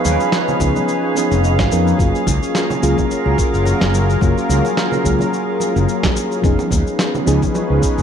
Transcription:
Already playing: fm electric piano F3 B3 C#4 D#4 G#4, analog synth pad F3 C#4 D#4 G#4 B4, synth texture F5
0.05 fretless electric bass D#2, high conga, cabasa
0.20 muted conga, cabasa
0.32 snare, cabasa
0.48 low conga, cabasa
0.59 fretless electric bass C#2, fm electric piano F3 B3 C#4 D#4 G#4, kick, muted conga, cabasa
0.76 high conga, low conga, cabasa
0.89 cabasa
1.15 fm electric piano F3 B3 C#4 D#4 G#4, muted conga, cabasa
1.31 fretless electric bass F1, cabasa
1.44 cabasa
1.59 fretless electric bass G#1, kick, snare, muted conga, high conga, cabasa
1.71 fretless electric bass F2, fm electric piano F3 B3 C#4 D#4 A#4, cabasa
1.87 cabasa
1.97 fretless electric bass F#1, fm electric piano F#3 A#3 C#4 F4 G#4, analog synth pad F#3 F4 A#4, kick, cabasa
2.15 cabasa
2.27 fretless electric bass C#2, kick, muted conga, high conga, cabasa
2.43 cabasa
2.55 snare, cabasa
2.70 muted conga, low conga, cabasa
2.82 fretless electric bass C#2, fm electric piano F#3 A#3 C#4 F4 G#4, cabasa
2.98 kick, high conga, low conga, cabasa
3.11 cabasa
3.26 fretless electric bass C#2, muted conga
3.38 kick, cabasa
3.54 fretless electric bass F#1, cabasa
3.66 muted conga, cabasa
3.81 fretless electric bass F#1, snare, high conga, low conga, cabasa
3.94 cabasa
4.10 cabasa
4.20 fretless electric bass F#1, fm electric piano F#3 A#3 C#4 F4 G#4, kick, muted conga, cabasa
4.38 cabasa
4.49 fretless electric bass C#2, high conga, cabasa
4.65 muted conga, cabasa
4.77 snare, cabasa
4.92 low conga, cabasa
5.04 fretless electric bass C#2, fm electric piano F#3 A#3 C#4 F4 G#4, kick, cabasa
5.19 muted conga, high conga, low conga, cabasa
5.34 cabasa
5.60 muted conga, cabasa
5.76 fretless electric bass F#1, cabasa
5.89 cabasa
6.03 kick, snare, high conga, cabasa
6.16 muted conga, cabasa
6.32 cabasa
6.42 fretless electric bass F1, fm electric piano F3 B3 C#4 D#4 G#4, analog synth pad F3 C#4 D#4 G#4 B4, kick, cabasa
6.59 muted conga, cabasa
6.71 fretless electric bass D#2, kick, high conga, cabasa
6.87 cabasa
6.99 snare, cabasa
7.15 muted conga, low conga, cabasa
7.26 fretless electric bass C#2, fm electric piano F3 B3 C#4 D#4 G#4, cabasa
7.42 kick, high conga, low conga, cabasa
7.55 muted conga, cabasa
7.70 fretless electric bass C#2
7.83 kick, cabasa
7.98 fretless electric bass F1, cabasa

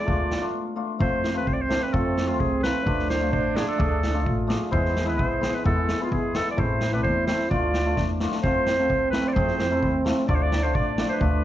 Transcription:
Already playing: hammered dulcimer G#3, clarinet D5
0.06 upright bass D2, hammered dulcimer A3 D4 F4, trombone F4, kick
0.31 snare
0.41 hammered dulcimer A3 D4 F4
0.76 hammered dulcimer A3 D4 F4
0.99 upright bass F2, hammered dulcimer A3 C4 F4, trombone C4, clarinet C5, kick
1.24 snare
1.34 hammered dulcimer A3 C4 F4, clarinet B4
1.47 upright bass C2, clarinet C5, kick
1.53 clarinet D5
1.62 clarinet C5
1.69 hammered dulcimer A3 C4 D4, snare
1.83 clarinet B4
1.93 upright bass F2, hammered dulcimer A3 C4 F4, clarinet A4, kick
2.17 snare
2.27 hammered dulcimer A3 C4 F4, clarinet F4
2.40 upright bass C2, clarinet G#4, kick
2.63 hammered dulcimer A3 C4 F4, clarinet B4, snare
2.85 upright bass D2, hammered dulcimer A3 D4 F4, trombone D4, kick
2.99 snare
3.10 clarinet C5, snare
3.20 hammered dulcimer A3 D4 F4
3.33 upright bass A1, clarinet C5, kick
3.55 hammered dulcimer A3 D4 F4, clarinet G#4, snare
3.68 clarinet A4
3.78 upright bass D2, hammered dulcimer A3 D4 G#4, kick
4.03 snare
4.13 hammered dulcimer A3 D4 F4
4.26 upright bass A1, trombone F4, kick
4.47 hammered dulcimer A3 D4 G#4, snare
4.71 upright bass E2, hammered dulcimer G#3 B3 E4, trombone E4, clarinet C5, kick
4.85 snare
4.96 snare
5.05 hammered dulcimer G#3 B3 E4, clarinet B4
5.18 upright bass B1, clarinet C5, kick
5.40 hammered dulcimer G#3 B3 E4, snare
5.54 clarinet B4
5.64 upright bass E2, hammered dulcimer G#3 B3 E4, clarinet A4, kick
5.88 snare
6.00 hammered dulcimer G#3 B3 E4, clarinet F4
6.12 upright bass E2, clarinet G#4, kick
6.34 hammered dulcimer G#3 B3 E4, clarinet A4, snare
6.51 clarinet D5
6.57 upright bass A1, hammered dulcimer A3 C4 E4, trombone E4, clarinet C5, kick
6.81 snare
6.92 hammered dulcimer A3 C4 D4, clarinet B4
7.04 upright bass E2, clarinet C5, kick
7.27 hammered dulcimer A3 C4 E4, clarinet C5, snare
7.39 snare
7.50 upright bass D2, hammered dulcimer A3 D4 F4, trombone F4, clarinet D5, kick
7.74 snare
7.86 hammered dulcimer A3 D4 F4
7.97 upright bass E2, trombone D4, kick, snare
8.20 hammered dulcimer A3 D4 F4, snare
8.32 snare
8.43 upright bass F2, hammered dulcimer A3 C4 F4, trombone C4, clarinet C5, kick
8.66 snare
8.79 hammered dulcimer A3 C4 F4
8.90 upright bass C2, kick
9.10 hammered dulcimer A3 C4 E4, clarinet B4, snare
9.28 clarinet D5
9.33 upright bass F2, hammered dulcimer A3 C4 G#4, clarinet C5, kick
9.48 snare
9.59 snare
9.70 hammered dulcimer A3 C4 E4
9.83 upright bass D#2, kick
10.05 hammered dulcimer A3 C4 F4, snare
10.17 snare
10.27 upright bass D2, hammered dulcimer A3 D4 F4, trombone D4, clarinet D5, kick
10.35 clarinet C5
10.42 clarinet D5
10.52 snare
10.63 hammered dulcimer A3 D4 F4, clarinet C5
10.75 upright bass A1, clarinet D5, kick
10.98 hammered dulcimer A3 D4 F4, snare
11.09 clarinet B4 C5
11.17 clarinet B4 C5
11.21 upright bass D2, hammered dulcimer A3 D4 F4, kick

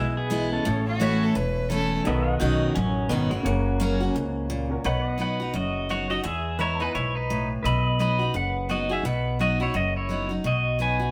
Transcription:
Already playing: upright bass B1, steel-string acoustic guitar B2, pedal steel guitar G#3 E4 B4 E5, honky-tonk piano E4 G#4 B4
0.17 pedal steel guitar B3 G#4
0.30 steel-string acoustic guitar E3 G#3 B3 E4
0.53 pedal steel guitar C#4 A4
0.65 upright bass A1, steel-string acoustic guitar A2, honky-tonk piano E4 A4 C#5
0.86 fiddle F#4
1.00 steel-string acoustic guitar E3 A3 C#4 E4, pedal steel guitar C#5 E5
1.23 fiddle A4
1.35 upright bass E1, steel-string acoustic guitar E2, fiddle B4
1.70 steel-string acoustic guitar E3 A3 C#4 E4, fiddle A4
2.04 upright bass B1, steel-string acoustic guitar B2, pedal steel guitar D#3 B3 D#5, honky-tonk piano D#4 F#4 B4
2.08 pedal steel guitar E5
2.33 pedal steel guitar F#5
2.40 upright bass B1, steel-string acoustic guitar B2 D#3 C#4 F#4, pedal steel guitar F#3 D#4
2.75 upright bass A1, steel-string acoustic guitar F#2, pedal steel guitar F#3 C#4
3.09 upright bass G#1, steel-string acoustic guitar B2 D#3 C#4 F#4, pedal steel guitar D#3 B3, honky-tonk piano D#4 F#4 B4
3.31 pedal steel guitar C#3 A#3, steel-string acoustic guitar C#4 F#4
3.43 upright bass F#1, steel-string acoustic guitar F#2, honky-tonk piano C#4 F#4 A#4, pedal steel guitar C#5 F#5
3.80 steel-string acoustic guitar F#3 A#3 C#4 F#4
4.00 steel-string acoustic guitar C#4 F#4
4.15 upright bass C#2, steel-string acoustic guitar G#2
4.50 steel-string acoustic guitar A#2
4.69 honky-tonk piano C#4 F#4 A#4
4.84 upright bass B1, steel-string acoustic guitar B2, pedal steel guitar B4 C#5 F#5
5.10 pedal steel guitar D#5
5.18 steel-string acoustic guitar F#3 B3 D#4 F#4, pedal steel guitar B4
5.22 pedal steel guitar F#5
5.40 steel-string acoustic guitar D#4 F#4
5.54 upright bass F#1, steel-string acoustic guitar F#2, pedal steel guitar F#4 D#5
5.89 steel-string acoustic guitar F#3 B3 D#4 F#4, pedal steel guitar F#4 C#5
6.10 steel-string acoustic guitar D#4 F#4, pedal steel guitar F#4 D#5
6.24 steel-string acoustic guitar E2, upright bass E2, pedal steel guitar G#4 E5
6.59 steel-string acoustic guitar E3 G#3 B3 E4, pedal steel guitar E4 B4 C#5 A#5
6.80 steel-string acoustic guitar B3 E4, pedal steel guitar D#4 B4
6.85 pedal steel guitar G#5
6.95 upright bass B1, steel-string acoustic guitar G#2, pedal steel guitar E4 C#5
7.15 pedal steel guitar D#4 B4
7.30 steel-string acoustic guitar A2
7.63 upright bass B1, steel-string acoustic guitar B2, pedal steel guitar B4 D#5 E5 B5
7.84 pedal steel guitar D#5
7.99 steel-string acoustic guitar F#3 B3 D#4 F#4, pedal steel guitar D#5 B5
8.19 steel-string acoustic guitar D#4 F#4
8.34 upright bass F#1, steel-string acoustic guitar F#2, pedal steel guitar B4 F#5
8.69 steel-string acoustic guitar F#3 B3 D#4 F#4, pedal steel guitar F#4 D#5
8.89 steel-string acoustic guitar D#4 F#4, pedal steel guitar G#4 E5
9.03 upright bass B1, steel-string acoustic guitar B2, pedal steel guitar B4 F#5
9.39 steel-string acoustic guitar F#3 B3 D#4 F#4, pedal steel guitar F#4 D#5
9.60 steel-string acoustic guitar D#4 F#4, pedal steel guitar E4 C#5
9.74 upright bass F#1, steel-string acoustic guitar F#2, pedal steel guitar F#4 D#5
9.96 pedal steel guitar E4 C#5
10.09 steel-string acoustic guitar F#3 B3 D#4 F#4
10.29 steel-string acoustic guitar D#4 F#4
10.44 upright bass B1, steel-string acoustic guitar B2, pedal steel guitar F#4 D#5
10.79 steel-string acoustic guitar F#3 B3 D#4 F#4, pedal steel guitar B4 G#5
10.99 steel-string acoustic guitar D#4 F#4

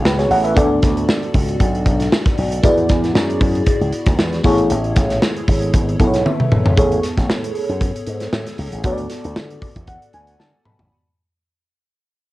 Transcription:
Already playing: fm electric piano B3 E4 G#4 A4 C#5
0.04 slap bass C#2, fm electric piano F#4 B4, snare
0.18 fm electric piano G#4 C#5, snare, closed hi-hat
0.30 slap bass A1, fm electric piano C#5 F#5, open hi-hat
0.44 fm electric piano B4 E5, closed hi-hat
0.54 slap bass D2, fm electric piano B3 D4 F#4 A4 D5, kick, closed hi-hat
0.82 slap bass D2, kick, snare, closed hi-hat
0.97 closed hi-hat
1.09 snare
1.23 closed hi-hat
1.34 slap bass C#2, kick, open hi-hat
1.49 closed hi-hat
1.60 slap bass B1, kick, closed hi-hat
1.75 closed hi-hat
1.86 slap bass B1, kick, closed hi-hat
2.00 snare, closed hi-hat
2.12 snare
2.26 kick, snare, closed hi-hat
2.38 slap bass B1, open hi-hat
2.52 closed hi-hat
2.63 slap bass E2, fm electric piano B3 E4 F#4 G#4 D5, kick, closed hi-hat
2.78 closed hi-hat
2.89 slap bass E2, kick, snare, closed hi-hat
3.04 snare, closed hi-hat
3.15 slap bass F#2, snare
3.30 closed hi-hat
3.41 slap bass F#2, kick, open hi-hat
3.55 closed hi-hat
3.66 kick, closed hi-hat
3.81 slap bass C#2, closed hi-hat
3.93 closed hi-hat
4.06 slap bass D2, kick, snare, closed hi-hat
4.19 slap bass E2, snare
4.33 snare, closed hi-hat
4.43 slap bass A1, fm electric piano B3 E4 G#4 A4 C#5, kick, open hi-hat
4.58 closed hi-hat
4.70 slap bass A1, closed hi-hat
4.84 closed hi-hat
4.96 slap bass A1, kick, snare, closed hi-hat
5.10 snare, closed hi-hat
5.22 snare
5.36 closed hi-hat
5.48 slap bass G#1, kick, open hi-hat
5.62 closed hi-hat
5.74 slap bass G#1, kick, closed hi-hat
5.89 closed hi-hat
5.99 slap bass B1, fm electric piano B3 E4 G#4 A4 B4, kick, closed hi-hat
6.07 fm electric piano C#5
6.14 snare, closed hi-hat
6.25 fm electric piano E5, high tom
6.40 mid tom
6.52 slap bass E1, mid tom
6.66 floor tom
6.76 slap bass A1, fm electric piano B3 G#4 A4 C#5, kick, closed hi-hat
6.92 closed hi-hat
7.03 snare, closed hi-hat
7.17 slap bass A1, kick, snare, closed hi-hat
7.29 slap bass A2, snare
7.44 closed hi-hat
7.55 open hi-hat
7.69 slap bass F#2, closed hi-hat
7.81 kick, closed hi-hat
7.96 closed hi-hat
8.07 slap bass G#2, closed hi-hat
8.20 snare, closed hi-hat
8.33 slap bass A2, snare
8.47 snare, closed hi-hat
8.58 slap bass C#2, open hi-hat
8.72 slap bass A1, closed hi-hat
8.84 slap bass D2, fm electric piano B3 F#4 A4 C#5, kick, closed hi-hat
8.92 fm electric piano D5
8.98 closed hi-hat
9.10 snare, closed hi-hat
9.24 slap bass D2, closed hi-hat
9.36 slap bass D3, snare
9.50 closed hi-hat
9.62 fm electric piano D5, kick, open hi-hat
9.76 slap bass E2, kick, closed hi-hat
9.87 fm electric piano F#5, kick, closed hi-hat
10.02 closed hi-hat
10.13 slap bass D2, fm electric piano G#5, closed hi-hat
10.27 closed hi-hat
10.39 slap bass D3, fm electric piano A5, snare
10.65 slap bass B2, fm electric piano B5, mid tom
10.79 slap bass A1, floor tom

